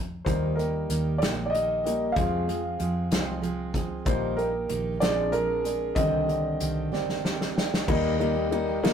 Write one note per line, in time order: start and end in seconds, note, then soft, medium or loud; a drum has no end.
0.00 0.22 F2 medium
0.25 0.86 D#2 medium
0.25 0.58 D#3 medium
0.25 1.17 G3 soft
0.25 1.18 A#3 soft
0.25 0.58 A#3 medium
0.25 1.18 D#4 soft
0.25 0.58 D#4 medium
0.25 0.57 G4 medium
0.25 0.58 C5 medium
0.25 kick medium
0.25 closed hi-hat medium
0.56 0.90 D#4 soft
0.56 0.90 G4 medium
0.56 1.22 A#4 medium
0.56 closed hi-hat soft
0.60 0.89 A#3 soft
0.89 1.20 D#2 medium
0.89 1.21 D#3 medium
0.89 1.21 A#3 medium
0.89 1.20 D#4 medium
0.89 1.20 G4 medium
0.89 closed hi-hat medium
1.18 2.13 A#1 medium
1.18 1.52 A#3 medium
1.18 1.53 D#4 medium
1.18 1.53 G4 medium
1.18 1.24 D5 medium
1.18 closed hi-hat medium
1.23 1.51 D#3 medium
1.23 snare loud
1.46 1.53 D5 medium
1.50 1.84 D#3 medium
1.50 1.85 A#3 medium
1.50 2.17 D#5 medium
1.54 1.84 D#4 medium
1.54 1.83 G4 medium
1.54 closed hi-hat medium
1.84 2.13 G3 soft
1.84 2.14 A#3 soft
1.84 2.17 A#3 soft
1.84 2.17 D#4 soft
1.84 2.14 D#4 medium
1.84 2.16 G4 soft
1.84 closed hi-hat medium
2.12 2.48 F2 medium
2.12 2.48 C3 medium
2.12 2.58 G#3 soft
2.12 3.68 F5 medium
2.16 2.76 F2 medium
2.16 2.48 F3 medium
2.16 2.48 G#3 medium
2.16 2.59 C4 soft
2.16 2.47 C4 medium
2.16 2.59 F4 medium
2.16 2.46 G#4 medium
2.16 kick loud
2.16 closed hi-hat medium
2.47 2.78 F3 soft
2.47 2.78 G#3 soft
2.47 2.79 C4 medium
2.47 2.79 G#4 medium
2.47 closed hi-hat soft
2.79 3.10 F2 medium
2.79 3.11 F3 medium
2.79 3.10 G#3 medium
2.79 3.10 C4 medium
2.79 3.09 G#4 medium
2.79 closed hi-hat medium
3.11 4.02 C2 medium
3.11 3.43 F2 medium
3.11 3.43 C3 medium
3.11 3.40 F3 medium
3.11 3.41 G#3 medium
3.11 3.42 C4 medium
3.11 3.42 G#4 medium
3.11 snare loud
3.11 closed hi-hat medium
3.42 3.74 F3 medium
3.42 3.74 G#3 medium
3.42 3.73 C4 medium
3.42 3.72 G#4 medium
3.42 closed hi-hat medium
3.74 4.05 F3 soft
3.74 4.06 G#3 soft
3.74 4.06 C4 medium
3.74 4.05 G#4 medium
3.74 kick medium
3.74 closed hi-hat medium
4.05 4.65 A#1 medium
4.05 4.37 A#2 medium
4.05 4.37 D#3 medium
4.05 4.48 G3 soft
4.05 4.37 A#3 medium
4.05 4.48 A#3 soft
4.05 4.48 D#4 medium
4.05 4.37 D#4 medium
4.05 4.35 G4 medium
4.05 4.39 C5 medium
4.05 kick loud
4.05 closed hi-hat medium
4.37 4.68 A#3 soft
4.37 4.69 D#4 soft
4.37 4.69 G4 medium
4.37 5.02 A#4 medium
4.37 closed hi-hat soft
4.69 4.99 A#1 medium
4.69 5.00 D#3 medium
4.69 5.01 A#3 medium
4.69 5.00 D#4 medium
4.69 5.00 G4 medium
4.69 closed hi-hat medium
5.00 5.93 A#1 medium
5.00 5.33 A#2 medium
5.00 5.31 F3 medium
5.00 5.92 G#3 soft
5.00 5.32 G#3 medium
5.00 5.92 C4 soft
5.00 5.32 D4 medium
5.00 5.92 D4 medium
5.00 5.32 G#4 medium
5.00 5.33 D5 medium
5.00 snare loud
5.00 closed hi-hat medium
5.32 5.64 F3 medium
5.32 5.64 G#3 medium
5.32 5.65 D4 medium
5.32 5.63 G#4 medium
5.32 5.98 A#4 loud
5.32 closed hi-hat medium
5.64 5.97 G#3 soft
5.64 5.96 D4 soft
5.64 5.96 G#4 medium
5.64 closed hi-hat medium
5.95 6.56 C2 loud
5.95 6.28 C3 medium
5.95 6.89 D3 medium
5.95 6.88 D#3 medium
5.95 6.28 D#3 medium
5.95 6.88 C4 soft
5.95 6.28 C4 medium
5.95 6.28 D4 medium
5.95 6.26 G4 medium
5.95 7.52 D#5 medium
5.95 kick loud
5.95 closed hi-hat medium
6.28 6.59 C4 soft
6.28 6.60 D4 medium
6.28 6.60 G4 medium
6.28 closed hi-hat soft
6.60 6.92 C2 loud
6.60 6.92 D#3 medium
6.60 6.92 C4 medium
6.60 6.91 D4 medium
6.60 6.91 G4 medium
6.60 closed hi-hat medium
6.92 7.84 G1 medium
6.92 7.25 C3 medium
6.92 7.22 D#3 medium
6.92 7.23 C4 medium
6.92 7.24 D4 medium
6.92 7.24 G4 medium
6.92 snare medium
7.09 snare soft
7.23 7.56 D#3 medium
7.23 7.56 C4 medium
7.23 7.56 D4 medium
7.23 7.54 G4 medium
7.23 snare medium
7.41 snare medium
7.55 7.88 C4 soft
7.55 7.88 D4 medium
7.55 7.88 G4 medium
7.55 snare medium
7.74 snare medium
7.87 8.93 D#2 medium
7.87 8.19 D#3 medium
7.87 8.14 G3 medium
7.87 8.19 A#3 medium
7.87 8.14 A#3 medium
7.87 8.20 D#4 medium
7.87 8.14 D#4 medium
7.87 8.20 G4 medium
7.87 kick loud
7.87 crash medium
8.19 8.36 D#3 medium
8.19 8.45 G3 medium
8.19 8.46 A#3 medium
8.19 8.36 A#3 medium
8.19 8.46 D#4 medium
8.19 8.35 D#4 medium
8.19 8.34 G4 medium
8.19 ride soft
8.35 8.69 A#3 soft
8.35 8.68 D#4 soft
8.35 8.66 G4 medium
8.51 8.77 G3 medium
8.51 8.77 A#3 medium
8.51 8.78 D#4 medium
8.51 ride medium
8.68 8.83 A#3 medium
8.68 8.83 D#4 medium
8.68 8.83 G4 medium
8.83 8.93 D#3 medium
8.83 8.93 G3 medium
8.83 8.93 A#3 medium
8.83 8.93 D#4 loud
8.83 8.93 D#4 medium
8.83 8.93 G4 medium
8.83 snare loud
8.83 ride medium